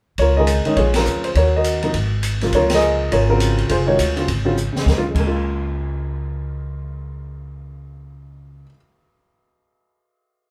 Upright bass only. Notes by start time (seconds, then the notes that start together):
0.18 C#2
0.67 muted upright bass stroke
0.77 A#1
1.06 D2
1.35 D#2
1.94 G#1
2.53 C#2
3.12 G#1
3.69 F1
3.99 D2
4.28 G#1
4.76 muted upright bass stroke
4.86 C#2
5.15 C#2